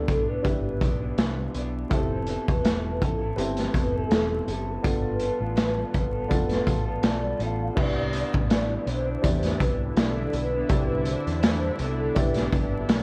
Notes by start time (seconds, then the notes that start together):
Already playing: D4 E4 G4 A4 D5
0.07 B1 C3 E3 B3 D4, kick, closed hi-hat
0.28 E3 B3 D4 B4
0.43 G1 D4 E4 G4 B4, kick, closed hi-hat
0.81 B1 C3 E3 B3 D4, kick, closed hi-hat
1.00 E3 B3 D4
1.17 C2 C3 E3 B3 D4, snare, closed hi-hat
1.54 B1 E3 B3 D4, closed hi-hat
1.89 F1 F3 B3 C4 E4 G4 A4 C5, kick, closed hi-hat
2.11 B3 E4 A4
2.27 F3 B3 E4 B4, closed hi-hat
2.31 A4
2.48 E1 B3 E4 A4, kick, closed hi-hat
2.64 F3 B3 E4 A4, snare, closed hi-hat
3.01 A1 F3 B3 E4 A4, kick, closed hi-hat
3.21 B3 E4 A4
3.36 G1 C4 E4 G4 B4, closed hi-hat
3.57 snare, closed hi-hat
3.74 F1 F3 B3 E4 A4, kick, closed hi-hat
3.94 B3 E4 A4
4.10 E1 F3 B3 E4 A4, snare, closed hi-hat
4.47 F#1 F3 B3 E4 G4 A4, closed hi-hat
4.70 B4
4.82 G1 G3 B3 D4 F4 A4, kick, closed hi-hat
5.19 G3 B3 F4 A4, closed hi-hat
5.39 A1 B3 F4 A4
5.56 G3 B3 F4 A4, snare, closed hi-hat
5.92 G1 G3 B3 F4 A4, kick, closed hi-hat
6.12 B3 F4 A4
6.28 F1 B3 D4 F4 A4, kick, closed hi-hat
6.50 snare, closed hi-hat
6.66 A1 G3 B3 F4 A4, kick, closed hi-hat
6.86 B3 F4 A4
7.03 B1 G3 B3 F4 A4 D5, snare, closed hi-hat
7.39 A1 G3 B3 F4 A4 F5, closed hi-hat
7.75 C2 C3 D3 E3 B3 D4 E4 G4 B4 D5, kick, crash
8.13 C3 E3 B3 D4, closed hi-hat
8.34 A1, kick
8.49 C3 E3 B3 D4, snare, closed hi-hat
8.86 B1 C3 E3 B3 D4 C5, closed hi-hat
9.06 E3 D4
9.22 E2 D4 E4 G4 D5, kick, closed hi-hat
9.42 E3 B3 D4, snare, closed hi-hat
9.58 C2 C3 E3 B3 D4 B4, kick, closed hi-hat
9.96 B1 C3 E3 B3 D4 A4, snare, closed hi-hat
10.16 E3 B3 D4
10.33 B1 B4, closed hi-hat
10.53 E3 B3 D4
10.69 C2 C3 E3 B3 D4 E4 G4 D5, kick, closed hi-hat
11.05 C3 E3 D4 C5, closed hi-hat
11.27 E2, closed hi-hat
11.42 C3 E3 D4, snare, closed hi-hat
11.79 C2 C3 E3 B3 D4 A4, closed hi-hat
11.99 E3 B3 D4
12.15 B1 D4 E4 G4 B4 D5, kick, closed hi-hat
12.34 B3 D4, snare, closed hi-hat
12.40 E3
12.52 G1 C3 E3 B3 D4, kick, closed hi-hat
12.89 B1 C3 E3 B3 D4, snare, closed hi-hat